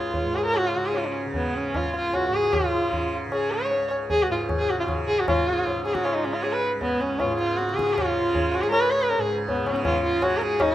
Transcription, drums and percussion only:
0.14 tabla tin medium
0.14 tabla ge medium
0.34 tabla na medium
0.54 tabla na medium
0.94 tabla tin medium
1.34 tabla tin medium
1.34 tabla ge medium
1.74 tabla na medium
1.74 tabla ge medium
1.94 tabla te medium
2.13 tabla na medium
2.13 tabla ge medium
2.33 tabla ge medium
2.53 tabla na loud
2.53 tabla ge medium
2.93 tabla tin medium
2.93 tabla ge medium
3.32 tabla na medium
3.71 tabla tin medium
3.91 tabla na medium
4.10 tabla tin medium
4.10 tabla ge medium
4.49 tabla na medium
4.49 tabla ge medium
4.69 tabla ge medium
4.88 tabla na medium
4.88 tabla ge medium
5.08 tabla ge medium
5.28 tabla na loud
5.28 tabla ge loud
5.67 tabla tin medium
5.67 tabla ge medium
5.86 tabla na medium
5.95 tabla ke medium
6.05 tabla na medium
6.25 tabla na medium
6.43 tabla tin medium
6.81 tabla tin medium
6.81 tabla ge medium
7.01 tabla na medium
7.20 tabla na medium
7.20 tabla ge medium
7.39 tabla te medium
7.59 tabla te medium
7.69 tabla te medium
7.79 tabla ke medium
7.89 tabla te medium
7.98 tabla na loud
7.98 tabla ge loud
8.35 tabla tin medium
8.35 tabla ge medium
8.54 tabla na medium
8.64 tabla ke medium
8.72 tabla na medium
9.11 tabla tin medium
9.49 tabla tin medium
9.49 tabla ge medium
9.67 tabla na medium
9.76 tabla ke medium
9.85 tabla na medium
9.85 tabla ge medium
10.04 tabla ge medium
10.22 tabla na medium
10.22 tabla ge medium
10.42 tabla te medium
10.60 tabla na loud
10.60 tabla ge loud

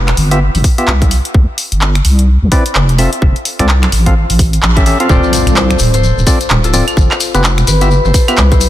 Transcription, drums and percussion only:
0.08 finger snap medium
0.08 clap medium
0.08 closed hi-hat soft
0.17 open hi-hat loud
0.31 closed hi-hat medium
0.55 open hi-hat medium
0.64 kick loud
0.64 open hi-hat loud
0.78 closed hi-hat medium
0.88 clap loud
1.02 kick loud
1.02 closed hi-hat medium
1.11 open hi-hat loud
1.25 closed hi-hat medium
1.34 kick loud
1.58 open hi-hat loud
1.72 closed hi-hat medium
1.81 clap loud
1.95 finger snap medium
1.95 closed hi-hat soft
2.05 open hi-hat loud
2.19 closed hi-hat medium
2.52 kick loud
2.52 open hi-hat loud
2.66 closed hi-hat medium
2.75 clap loud
2.89 closed hi-hat medium
2.98 open hi-hat loud
3.13 closed hi-hat medium
3.22 kick loud
3.36 closed hi-hat soft
3.45 open hi-hat loud
3.59 finger snap soft
3.59 closed hi-hat medium
3.69 clap loud
3.83 finger snap medium
3.83 clap medium
3.83 closed hi-hat soft
3.92 open hi-hat loud
4.06 kick medium
4.06 closed hi-hat medium
4.30 open hi-hat medium
4.39 kick loud
4.39 open hi-hat loud
4.53 closed hi-hat medium
4.63 clap loud
4.77 kick loud
4.77 closed hi-hat medium
4.86 open hi-hat loud
5.00 closed hi-hat medium
5.09 kick loud
5.09 shekere soft
5.23 shekere soft
5.33 open hi-hat loud
5.33 shekere loud
5.47 finger snap soft
5.47 closed hi-hat medium
5.47 shekere soft
5.56 clap loud
5.56 shekere soft
5.70 finger snap medium
5.70 closed hi-hat soft
5.70 shekere soft
5.79 open hi-hat loud
5.79 shekere medium
5.94 closed hi-hat medium
5.94 shekere soft
6.03 shekere soft
6.18 shekere soft
6.27 kick loud
6.27 open hi-hat loud
6.27 shekere loud
6.41 closed hi-hat medium
6.41 shekere soft
6.49 clap loud
6.49 shekere medium
6.64 closed hi-hat medium
6.64 shekere soft
6.74 open hi-hat loud
6.74 shekere loud
6.88 closed hi-hat medium
6.88 claves medium
6.88 shekere soft
6.97 kick loud
6.97 shekere medium
7.11 clap medium
7.11 claves medium
7.11 shekere soft
7.20 open hi-hat loud
7.20 shekere loud
7.35 finger snap soft
7.35 closed hi-hat medium
7.35 shekere soft
7.44 clap loud
7.44 shekere medium
7.58 finger snap medium
7.58 closed hi-hat soft
7.58 shekere soft
7.67 open hi-hat loud
7.67 shekere loud
7.81 closed hi-hat medium
7.81 shekere soft
7.91 shekere soft
8.05 shekere soft
8.14 kick loud
8.14 open hi-hat loud
8.14 shekere medium
8.28 closed hi-hat medium
8.28 claves medium
8.28 shekere soft
8.37 clap loud
8.37 shekere medium
8.52 kick loud
8.52 closed hi-hat medium
8.52 shekere soft
8.61 open hi-hat loud
8.61 shekere loud

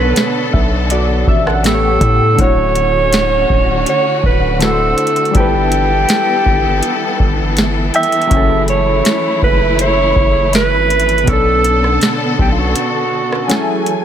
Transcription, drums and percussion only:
0.16 snare loud
0.16 closed hi-hat medium
0.53 kick loud
0.90 closed hi-hat medium
1.27 kick loud
1.47 cross-stick medium
1.64 snare loud
1.64 closed hi-hat medium
2.01 kick medium
2.01 closed hi-hat medium
2.38 kick loud
2.38 closed hi-hat medium
2.75 closed hi-hat medium
3.13 snare loud
3.13 closed hi-hat medium
3.50 kick loud
3.86 closed hi-hat medium
4.23 kick medium
4.61 snare loud
4.61 closed hi-hat medium
4.98 closed hi-hat medium
5.07 closed hi-hat medium
5.16 closed hi-hat soft
5.25 closed hi-hat soft
5.35 kick loud
5.35 closed hi-hat medium
5.72 closed hi-hat medium
6.09 snare loud
6.09 closed hi-hat medium
6.46 kick medium
6.83 closed hi-hat medium
7.20 kick loud
7.57 snare loud
7.57 closed hi-hat medium
7.94 closed hi-hat medium
8.03 closed hi-hat medium
8.12 closed hi-hat medium
8.22 closed hi-hat soft
8.31 kick loud
8.31 closed hi-hat medium
8.68 closed hi-hat medium
9.05 snare loud
9.05 closed hi-hat medium
9.42 kick medium
9.79 closed hi-hat medium
10.16 kick loud
10.53 snare loud
10.53 closed hi-hat medium
10.90 closed hi-hat medium
11.00 closed hi-hat medium
11.09 closed hi-hat soft
11.18 closed hi-hat soft
11.27 kick loud
11.27 closed hi-hat medium
11.64 closed hi-hat medium
11.84 cross-stick medium
12.01 snare loud
12.01 closed hi-hat medium
12.39 kick loud
12.76 closed hi-hat medium
13.32 cross-stick medium
13.50 snare loud
13.50 closed hi-hat medium
13.86 closed hi-hat medium

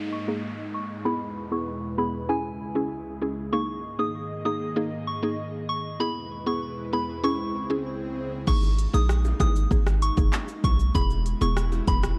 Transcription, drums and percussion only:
8.48 kick loud
8.48 crash loud
8.48 shaker medium
8.63 high bongo medium
8.63 shaker medium
8.79 closed hi-hat medium
8.79 shaker medium
8.94 shaker medium
9.09 cross-stick loud
9.09 shaker medium
9.25 high bongo medium
9.25 shaker soft
9.40 kick medium
9.40 cross-stick loud
9.40 closed hi-hat medium
9.40 low bongo medium
9.40 shaker medium
9.56 shaker medium
9.71 kick medium
9.71 shaker medium
9.87 cross-stick loud
9.87 high bongo medium
9.87 shaker medium
10.02 closed hi-hat medium
10.02 shaker medium
10.17 kick medium
10.17 shaker medium
10.33 clap loud
10.33 high bongo medium
10.33 shaker medium
10.48 shaker medium
10.64 kick loud
10.64 closed hi-hat medium
10.64 high bongo medium
10.64 low bongo medium
10.64 shaker medium
10.80 shaker medium
10.95 kick loud
10.95 shaker medium
11.10 high bongo medium
11.10 shaker medium
11.26 closed hi-hat medium
11.26 shaker medium
11.42 shaker medium
11.57 cross-stick loud
11.57 shaker medium
11.72 high bongo medium
11.72 shaker soft
11.88 kick medium
11.88 closed hi-hat medium
11.88 low bongo medium
11.88 shaker medium
12.03 cross-stick loud
12.03 shaker medium

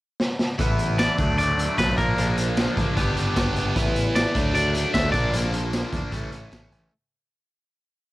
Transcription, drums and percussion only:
0.20 snare medium
0.39 snare medium
0.59 kick loud
0.59 closed hi-hat medium
0.79 closed hi-hat medium
0.99 snare medium
0.99 closed hi-hat medium
0.99 tambourine medium
1.19 kick medium
1.19 closed hi-hat medium
1.38 closed hi-hat medium
1.59 closed hi-hat medium
1.78 kick medium
1.78 snare medium
1.78 closed hi-hat medium
1.78 tambourine loud
1.98 kick medium
1.98 closed hi-hat medium
2.18 closed hi-hat medium
2.38 closed hi-hat medium
2.57 snare medium
2.57 closed hi-hat medium
2.57 tambourine loud
2.77 kick medium
2.77 closed hi-hat medium
2.97 kick medium
2.97 closed hi-hat medium
3.17 closed hi-hat medium
3.36 kick medium
3.36 snare loud
3.36 closed hi-hat medium
3.36 tambourine loud
3.56 closed hi-hat medium
3.76 kick loud
3.76 closed hi-hat medium
3.87 snare soft
3.96 closed hi-hat medium
4.16 snare loud
4.16 closed hi-hat medium
4.16 tambourine loud
4.35 kick loud
4.35 closed hi-hat medium
4.55 closed hi-hat medium
4.75 closed hi-hat medium
4.94 kick medium
4.94 snare loud
4.94 closed hi-hat medium
4.94 tambourine loud
5.14 kick medium
5.14 closed hi-hat medium
5.33 closed hi-hat medium
5.44 snare soft
5.53 closed hi-hat medium
5.73 snare loud
5.73 closed hi-hat medium
5.73 tambourine medium
5.93 kick medium
5.93 closed hi-hat medium
6.12 kick medium
6.12 closed hi-hat medium
6.32 closed hi-hat medium
6.52 kick medium
6.52 snare loud
6.52 closed hi-hat medium
6.52 tambourine loud
6.72 closed hi-hat medium

